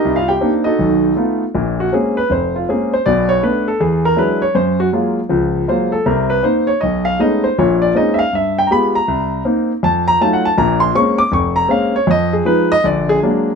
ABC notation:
X:1
M:4/4
L:1/8
Q:"Swing" 1/4=159
K:Bbm
V:1 name="Grand piano"
(3[^D=G^A^d] [Ff] [G=g]- [Gg] [E_G=Ae]3 z2 | z G A _c =c F A c | =d _d =B =A ^G _B =B d | c G z4 c =A |
B _c =c d ^d f d c | d =d e [=ef] e =g [b=b] _b- | b2 z2 =a b (3a g a | b c' d' =d' _d' b f d |
e A _c e =d A z2 |]
V:2 name="Grand piano"
C,,2 [B,C=DE] z [=B,,,^D,]2 [=A,=B,^D^E] z | [B,,,B,,]2 [A,B,CD] z F,,,2 [A,B,CD] z | [=B,,,=B,,]2 [=A,=B,=D] z =E,,2 [^F,^G,D=E] z | G,,2 [G,A,B,F] z [D,,F,]2 [G,A,B,F] z |
[C,,C,]2 [B,CE] z =B,,,2 [^G,=A,=B,^C^D] z | [B,,,B,,]2 [A,B,CDE] z =G,,2 [A,=B,F=G] z | C,,2 [B,CE] z F,,2 [G,=A,EF] z | [B,,,B,,]2 [A,B,CD] z F,,,2 [A,B,CD] z |
F,,2 [F,A,E] z [B,,,=D,]2 [^F,A,B,=D] z |]